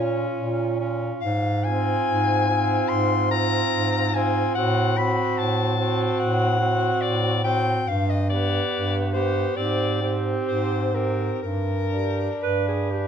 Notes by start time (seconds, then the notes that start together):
Already playing: A#2 C#4 F4 C#5
0.38 A#2
0.80 C#4 F4
1.21 G#2 F5
1.64 C4 F4 G#5
2.07 G#2
2.48 C4 F4
2.88 G#2 C6
3.31 C4 F4 A#5
3.72 G#2
4.14 C4 F4 G#5
4.55 A2 C4 F#4 F#5
4.97 C4 F#4 B5
5.38 A2 A5
5.77 C4 F#4
6.19 A2 F#5
6.59 C4 F#4
7.01 A2 D5
7.43 C4 F#4 G5
7.87 G2 F5
8.10 D#5
8.29 B3 G4 D5
8.72 G2
9.13 B3 G4 C5
9.56 G#2 C4 G4 D5
10.02 C4 G4
10.48 G#2 C5
10.93 C4 G4 A#4
11.42 G2 A#4
11.91 D4 G4
12.42 G2 B4
12.68 G#4
12.91 D4 G4